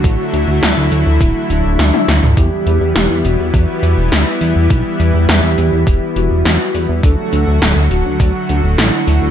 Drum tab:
HH |x-x-x-x-x-x-x-o-|x-x-x-x-x-x-x-o-|x-x-x-x-x-x-x-o-|x-x-x-x-x-x-x-o-|
SD |----o-------o-o-|----o-------o---|----o-------o---|----o-------o---|
T1 |-------------o--|----------------|----------------|----------------|
T2 |---------------o|----------------|----------------|----------------|
BD |o-------o-------|o-------o-------|o-------o-------|o-------o-------|